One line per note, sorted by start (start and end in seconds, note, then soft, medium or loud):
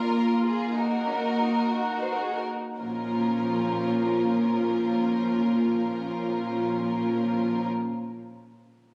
0.00 2.52 A#3 soft
0.00 0.75 F4 soft
0.00 0.75 F4 medium
0.00 0.44 A#4 medium
0.45 0.75 G#4 medium
0.75 0.83 D#4 medium
0.75 1.71 D#4 soft
0.75 1.71 F#4 soft
0.75 2.00 A#4 medium
1.07 1.15 C#4 soft
1.39 1.72 D#4 soft
1.73 2.56 D#4 soft
1.73 2.24 F#4 soft
1.73 2.56 F#4 soft
2.00 2.11 C5 soft
2.11 2.22 A#4 soft
2.22 2.33 G#4 soft
2.33 2.44 A#4 soft
2.79 7.65 A#2 soft
2.79 7.65 F3 soft
2.79 7.65 A#3 soft
2.79 7.65 C#4 soft
2.79 7.65 F4 soft
2.79 7.65 A#4 soft